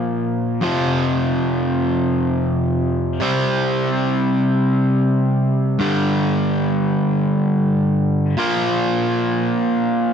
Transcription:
overdriven electric guitar
Already playing: A#2 F3 A#3
0.61 F2 C3 F3
3.20 C3 G3 C4
5.79 G2 D3 G3
8.37 A#2 F3 A#3

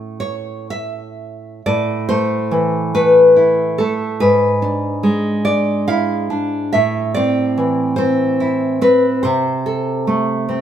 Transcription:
nylon-string guitar
Already playing: A2 A3 C#4 A4
0.20 C#5
0.70 E5
1.66 A2 D5
2.09 A3 C5
2.51 E3
2.94 A3 B4
3.36 E4
3.78 A3 A4
4.20 G#2 B4
4.62 D4
5.03 G#3
5.45 D4 D5
5.88 E4 F5
6.30 D4
6.73 A2 E5
7.14 C4 D5
7.58 E3
7.96 C4 C5
8.40 E4
8.81 C4 B4
9.23 C3 C5
9.66 A4
10.07 A3
10.49 C4

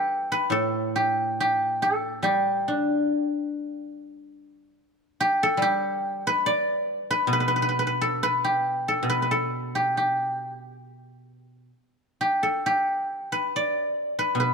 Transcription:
guzheng
Already playing: G3 G4 A4 B4
0.32 B4
0.50 A2 A4
0.96 G4
1.40 G4
1.82 A4
2.23 G3 G4
2.68 D4
5.20 G4
5.43 A4
5.57 G3
5.62 G4
6.27 B4
6.46 D5
7.11 B4
7.27 B2
7.33 B4
7.40 B4
7.48 B4
7.56 B4
7.62 B4
7.69 B4
7.79 B4
7.87 B4
8.01 A4
8.23 B4
8.44 G4
8.88 A4
9.03 B2
9.10 B4
9.22 B4
9.31 A4
9.75 G4
9.97 G4
12.21 G4
12.43 A4
12.66 G4
13.32 B4
13.56 D5
14.19 B4
14.35 B2
14.40 B4

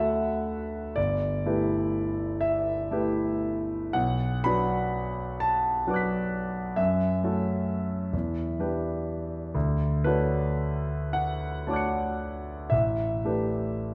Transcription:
grand piano
Already playing: A3 F#4 A4 B4 E5 F#5
0.96 G1 D5
1.46 A3 E4 G4 B4
2.41 E5
2.91 A3 E4 G4 B4
3.93 B1 F#5
4.44 F#3 D4 F#4 B4 B5
5.40 A5
5.87 F#3 D4 F#4 B4 F#5 D6
5.94 F#6 B6
6.76 F#2 E5
7.24 A3 C#4 F#4 A4
8.13 E2
8.59 G3 D4 G4 B4
9.55 D2
10.04 A3 D4 F#4 B4 C#5
11.13 F#5
11.67 A3 D4 F#4 C#5 A5 D6
11.73 F#6 C#7
12.70 A1 E5
13.25 A3 D4 G4 B4

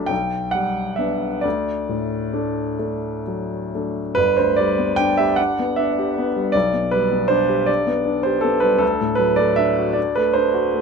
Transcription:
grand piano
Already playing: C2 F#3 A3 D4
0.06 B1 G5
0.51 G3 F#5
0.96 B3 D4 E5
1.41 D2 D5
1.89 A2
2.33 A3 D4
2.79 A3 D4
3.27 F#3
3.75 A3 D4
4.15 G1 B4
4.37 D2 C5
4.56 G3 D5
4.78 B3
4.96 D4 G5
5.17 G4 E5
5.36 D4 F#5
5.59 B3
5.76 D4 E5
5.99 G4
6.18 B3
6.36 G3
6.52 B1 D5
6.74 B2
6.91 G3 B4
7.11 B3
7.28 D4 C5
7.49 G4
7.66 D4 D5
7.87 B3
8.06 D4
8.23 G4 C5
8.41 B3 A4
8.60 G3 B4
8.78 D2 A4
9.01 A2
9.15 F#3 B4
9.36 A3 D5
9.56 D4 E5
9.78 F#4
9.93 D4 D5
10.15 A3 B4
10.33 D4 C5
10.54 F#4
10.74 A3

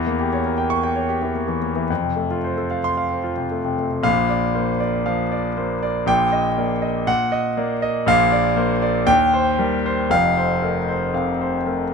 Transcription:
grand piano
Already playing: E2 E3
0.07 A#3
0.20 G4
0.33 C#5
0.46 A#4
0.58 G5
0.70 C#6
0.83 G5
0.96 C#5
1.09 G4
1.22 E3
1.35 A#3
1.48 E3
1.62 A#3
1.76 E3
1.90 F2
2.04 C3
2.16 A3
2.31 F4
2.44 C5
2.57 A4
2.71 F5
2.84 C6
2.97 F5
3.11 C5
3.24 F4
3.37 C3
3.52 A3
3.64 C3
3.78 A3
3.91 C3
4.03 A#1 A#2 F5
4.29 D5
4.55 A#3 C5
4.80 D5
5.06 F3 F5
5.32 D5
5.57 A#3 C5
5.83 D5
6.06 A#1 A#2 G5
6.32 D#5
6.58 A#3 D5
6.82 D#5
7.07 A#2 F#5
7.32 D#5
7.57 A#3 D5
7.82 D#5
8.06 A#1 A#2 F5
8.32 D5
8.56 A#3 C5
8.82 D5
9.07 D#2 G5
9.34 C5
9.59 G3 A#4
9.86 C5
10.10 F1 F2 F5
10.37 C5
10.62 A3 A#4
10.89 C5
11.14 C3 F5
11.41 C5
11.66 A3 A#4

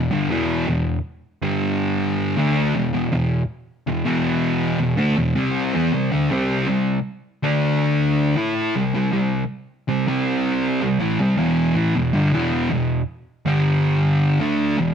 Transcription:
distorted electric guitar
Already playing: E2 B2
0.11 G2 D3
0.30 E2 B2 E3
0.67 E2 B2
1.42 G2 D3 G3
2.37 D3 A3 D4
2.75 E2 B2
2.93 E2 B2
3.12 E2 B2
3.87 E2 B2
4.05 E2 B2 E3
4.80 E2 B2
4.97 D3 A3
5.17 E2 B2
5.36 C3 G3 C4
5.74 E3 B3
5.93 C3 G3
6.12 D3 A3
6.31 C3 G3 C4
6.68 C3 G3
7.43 D3 A3 D4
8.36 A3 E4 A4
8.76 C3 G3
8.95 C3 G3
9.12 C3 G3
9.88 C3 G3
10.07 C3 G3 C4
10.81 C3 G3
11.00 A2 E3
11.20 C3 G3
11.37 E2 B2 E3
11.75 A2 E3
11.95 E2 B2
12.13 G2 D3
12.33 E2 B2 E3
12.70 E2 B2
13.46 G2 D3 G3
14.40 D3 A3 D4
14.78 E2 B2

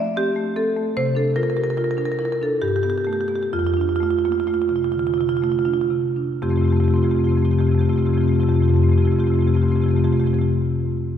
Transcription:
marimba
Already playing: F3 A3
0.00 D5
0.17 C4 G4
0.36 A3
0.56 C4 A4
0.76 A3
0.97 C3 C5
1.15 D4 A4
1.36 F4 A#4
1.43 A#4
1.50 A#4
1.57 G4 A#4
1.64 A#4
1.70 A#4
1.77 F4 A#4
1.84 A#4
1.91 A#4
1.97 D4 A#4
2.05 A#4
2.12 A#4
2.19 E4 A#4
2.25 A#4
2.32 A#4
2.42 D4 A4
2.62 G2 G4
2.68 G4
2.76 G4
2.83 B3 G4
2.90 G4
2.98 G4
3.05 A3 G4
3.13 G4
3.21 G4
3.28 B3 G4
3.35 G4
3.43 G4
3.53 F2 F4
3.59 F4
3.67 F4
3.74 D4 F4
3.81 F4
3.89 F4
3.96 F4
4.00 A3 F4
4.11 F4
4.19 F4
4.25 A#3 F4
4.32 F4
4.40 F4
4.47 A3 F4
4.54 F4
4.62 F4
4.69 C3 F4
4.76 F4
4.84 F4
4.92 D3 F4
4.99 F4
5.07 F4
5.14 C3 F4
5.21 F4
5.29 F4
5.37 F4
5.42 A3 F4
5.52 F4
5.59 F4
5.65 D4 F4
5.74 F4
5.81 F4
5.91 C3
6.16 D4
6.42 F2 C3 A3 C4 F4 G4
6.49 F2 C3 A3 C4 F4 G4
6.56 A3 C4 F4 G4
6.61 F2 C3 A3 G4
6.65 C4 F4
6.70 F2 C3 A3 F4 G4
6.76 C3 C4 F4 G4
6.80 F2 A3 G4
6.84 A3 C4 F4
6.90 C3 C4 G4
6.94 F2 A3 F4 G4
6.98 C3 C4
7.03 F2 C3 A3 F4 G4
7.10 A3 C4 F4 G4
7.15 F2 C3 F4 G4
7.19 A3 C4
7.24 F2 C3 A3 F4 G4
7.29 C3 C4 F4 G4
7.35 F2 A3 C4 F4 G4
7.42 C3 A3 C4 F4 G4
7.48 F2 A3 G4
7.52 C3 C4 F4
7.58 F2 C3 A3 C4 F4 G4
7.66 F2 A3 F4 G4
7.71 C3 A3 C4 F4 G4
7.78 F2 C3 C4 F4 G4
7.83 A3 G4
7.88 F2 C3 A3 C4 F4
7.93 F4 G4
7.97 F2 C3 A3 C4 G4
8.03 A3 C4 F4 G4
8.07 F2 C3 F4
8.13 C3 A3 C4 G4
8.17 F2 A3 F4 G4
8.23 C3 C4 F4
8.27 F2 A3 C4 G4
8.33 C3 A3 F4 G4
8.39 F2 C4 F4 G4
8.43 C3 A3 F4
8.49 F2 A3 C4 G4
8.53 C3 C4 F4 G4
8.60 F2 C3 A3 F4 G4
8.65 A3 C4 F4
8.69 F2 C3 G4
8.74 C3 A3 C4 F4 G4
8.79 F2 F4
8.83 C3 A3 C4 G4
8.89 F2 A3 F4 G4
8.93 C3 C4
8.98 F2 A3 F4 G4
9.02 C3 C4 F4 G4
9.07 F2 A3
9.11 C3 C4 F4 G4
9.16 F2 A3 C4 F4
9.20 C3 A3 G4
9.27 F2 C3 C4 F4 G4
9.32 A3 F4 G4
9.36 F2 C3 A3 C4
9.41 C4 F4 G4
9.47 F2 C3 A3 F4 G4
9.54 F2 C3 A3 C4 F4 G4
9.62 A3 C4 F4 G4
9.66 F2 C3 G4
9.70 A3 C4 F4
9.75 F2 C3 F4 G4
9.80 C3 A3 C4 F4 G4
9.86 F2 A3 G4
9.90 C3 C4 F4
9.95 F2 A3 F4 G4
9.99 C3 C4
10.04 F2 A3 C4 F4 G4
10.12 F2 C3 A3 F4 G4
10.17 C4 F4 G4
10.21 F2 C3 A3
10.26 C3 C4 F4 G4
10.30 F2 A3 F4
10.34 C4 G4
10.38 C3 A3 F4 G4

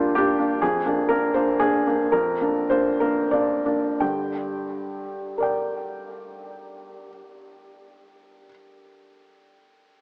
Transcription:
felt piano
Already playing: G2 A#3 D4 F4 G4
0.15 A#3 D4 G4
0.39 A#3 D4
0.62 F2 G#4
0.85 A#3 D4
1.09 A#3 D4 A#4
1.34 A#3 D4 C5
1.59 A#3 D4 G#4
1.87 A#3 D4
2.12 F2 A#4
2.41 A#3 D4
2.70 A#3 D4 C5
3.00 A#3 D4 A#4
3.31 A#3 D4 D5
3.66 A#3 D4
4.00 G2 D3 G5
5.38 A#4 D5
5.42 G5

